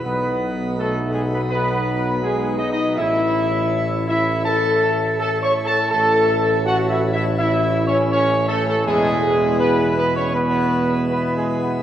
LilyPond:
<<
  \new Staff \with { instrumentName = "Trumpet section" } { \time 4/4 \key a \lydian \tempo 4 = 82 b'4 a'8 gis'16 b'16 b'4 \tuplet 3/2 { gis'8. dis''16 dis''8 } | e''4. e''8 a''4 \tuplet 3/2 { a''8 cis'''8 a''8 } | a''4 \tuplet 3/2 { fis''8 e''8 e''8 e''4 cis''8 } cis''8 a'16 a'16 | gis'4 b'8 b'16 cis''16 b'4 \tuplet 3/2 { b'8 gis'8 b'8 } | }
  \new Staff \with { instrumentName = "French horn section" } { \time 4/4 \key a \lydian b4 a8 gis16 b16 b4 \tuplet 3/2 { gis8. dis'16 dis'8 } | e'4. e'8 a'4 \tuplet 3/2 { a'8 cis''8 a'8 } | a'4 \tuplet 3/2 { fis'8 e'8 e'8 e'4 cis'8 } cis'8 a16 a16 | gis4 b8 b16 cis'16 b4 \tuplet 3/2 { b8 gis8 b8 } | }
  \new Staff \with { instrumentName = "Trombone section" } { \time 4/4 \key a \lydian b4 a8 gis16 b16 b4 \tuplet 3/2 { gis8. dis'16 dis'8 } | e'4. e'8 a'4 \tuplet 3/2 { a'8 cis''8 a'8 } | a'4 \tuplet 3/2 { fis'8 e'8 e'8 e'4 cis'8 } cis'8 a16 a16 | gis4 b8 b16 cis'16 b4 \tuplet 3/2 { b8 gis8 b8 } | }
  \new Staff \with { instrumentName = "Pipe organ" } { \time 4/4 \key a \lydian dis'1 | e'1 | e'1~ | e'1 | }
  \new Staff \with { instrumentName = "Pipe organ" } { \clef bass \time 4/4 \key a \lydian <b, fis b'>1 | <a, a cis''>1 | <a, a cis''>1 | <b, gis b'>1 | }
  \new Staff \with { instrumentName = "Tuba" } { \clef bass \time 4/4 \key a \lydian b,,1 | a,,2.~ a,,8 r8 | a,,1 | e,1 | }
>>